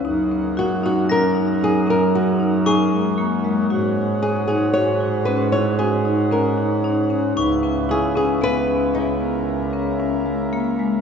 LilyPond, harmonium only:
<<
  \new Staff \with { instrumentName = "Harmonium" } { \time 7/4 \key cis \dorian \tempo 4 = 115 << { fis'1.~ fis'4 | fis'1.~ fis'4 | e'1.~ e'4 | } \\ { ais1.~ ais4 | cis'1.~ cis'4 | b2.~ b8 ais'2.~ ais'8 | } >> }
  \new Staff \with { instrumentName = "Harmonium" } { \clef bass \time 7/4 \key cis \dorian gis1.~ gis4~ | gis1.~ gis4 | cis1.~ cis4 | }
>>